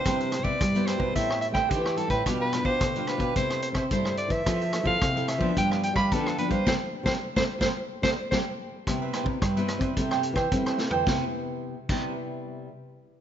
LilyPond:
<<
  \new Staff \with { instrumentName = "Cavaquinho" } { \time 4/4 \key c \major \tempo 4 = 109 <g' b' c'' e''>16 <b' c'' e''>16 r16 <b' c'' e''>8 <b' c'' e''>16 <g' b' c'' e''>16 <b' c'' e''>16 <a' c'' e'' g''>16 <c'' e'' g''>16 r16 <c'' e'' g''>16 <a' c'' e'' g''>16 <c'' e'' g''>8 <c'' e'' g''>16 | <d' g' b' f''>16 <g' b' f''>16 r16 <g' b' f''>8 <g' b' f''>16 <d' g' b' f''>16 <g' b' f''>16 <e' a' c'' e''>16 <a' c'' e''>16 r16 <a' c'' e''>16 <e' a' c'' e''>16 <a' c'' e''>8 <a' c'' e''>16 | <f' a' c'' e''>16 <a' c'' e''>16 r16 <a' c'' e''>8 <a' c'' e''>16 <f' a' c'' e''>16 <a' c'' e''>16 <d' g' b' f''>16 <g' b' f''>16 r16 <g' b' f''>16 <d' g' b' f''>16 <g' b' f''>8 <g' b' f''>16 | <g' a' c''>16 r8 <g' a' c''>16 r16 <g' a' c''>16 r16 <g' a' c''>16 r8 <g' a' c''>16 r16 <g' a' c''>16 r8. |
<g' b' c'' e''>16 <b' c'' e''>16 <g' b' c'' e''>16 r16 <g' b' c'' e''>16 <b' c'' e''>8 <b' c'' e''>16 <a' c'' e'' g''>16 <c'' e'' g''>16 r16 <c'' e'' g''>8 <c'' e'' g''>16 <a' c'' e'' g''>16 <c'' e'' g''>16 | <g' b' c'' e''>16 r4 r16 <g' b' c'' e''>8 r2 | }
  \new Staff \with { instrumentName = "Soprano saxophone" } { \time 4/4 \key c \major c''8. d''8. c''8 e''8 e''16 g''16 g'8 a'16 b'16~ | b'16 b'8 c''8. b'8 c''8 c''16 r16 c''8 d''16 e''16~ | e''8. f''8. e''8 g''8 g''16 b''16 a'8 b'16 c''16 | c''16 r8 c''16 r16 c''16 r16 c''16 r8 c''16 r16 c''16 r8. |
r1 | r1 | }
  \new Staff \with { instrumentName = "Nylon-string guitar" } { \time 4/4 \key c \major << { <g b e'>8 r16 <g b e'>8 <g b e'>8. <g c' e'>8. <g c' e'>8. <g c' e'>8 | <g d' f'>8 <g d' f'>8. <g d' f'>8. <g a e'>8. r16 <g a e'>8. r16 | <c' e' a'>16 r16 <c' e' a'>16 <c' e' a'>8 <c' e' a'>8 <f b d'>4 r16 <f b d'>8 <f b d'>16 r16 | <g a c'>16 r8 <g a c'>16 r16 <g a c'>16 r16 <g a c'>16 r8 <g a c'>16 r16 <g a c'>16 r8. |
<g b e'>8 <g b e'>8 r16 <g b e'>8. <g a e'>8. r16 <g a e'>4 | <c g b e'>8 r4 <c g b e'>8 r2 | } \\ { c4 g,4 a,4 e4 | b,4 b,4 c4 g,4 | f4 c4 g,4 d4 | r1 |
c4 g,4 c4 c4 | r1 | } >> }
  \new Staff \with { instrumentName = "Nylon-string guitar" } { \clef bass \time 4/4 \key c \major c8. c16 g8. b,16 a,8. a16 e8. a,16 | b,8. b,16 d8. b,16 c8. c'16 g8. e16 | f8. f16 c8. f16 g8. g16 d8. g16 | c16 r8 c16 r16 c16 r16 c16 r8 c16 r16 c16 r8. |
c8 r16 c16 g8. c'16 c8. e16 c'8. e16 | c16 r4 r16 c8 r2 | }
  \new DrumStaff \with { instrumentName = "Drums" } \drummode { \time 4/4 <hh bd ss>16 hh16 <hh ss>16 bd16 <hh bd ss>16 hh16 <hh ss>16 bd16 <hh bd>16 ss16 hh16 <bd ss>16 <hh bd>16 ss16 hh16 <hh bd>16 | <hh bd ss>8 <hh ss>16 bd16 <hh bd ss>16 hh16 <hh ss>16 <hh bd>16 <hh bd>16 <hh ss>16 hh16 <hh bd ss>16 <hh bd>16 ss16 hh16 <hh bd>16 | <hh bd ss>16 hh16 <hh ss>16 bd16 <hh bd ss>16 hh16 <hh ss>16 bd16 <hh bd>16 ss16 hh16 <bd ss>16 <hh bd>16 ss16 hh16 <hh bd>16 | <bd sn>8. <bd sn>16 r16 <bd sn>8 <bd sn>16 r8 <bd sn>8 <bd sn>4 |
<hh bd ss>8 <hh ss>16 bd16 <hh bd ss>16 hh16 <hh ss>16 <hh bd>16 <hh bd>16 ss16 hh16 <bd ss>16 <hh bd>16 <hh ss>16 sn16 tomfh16 | <bd sn>4 r8 <cymc bd>8 r4 r4 | }
>>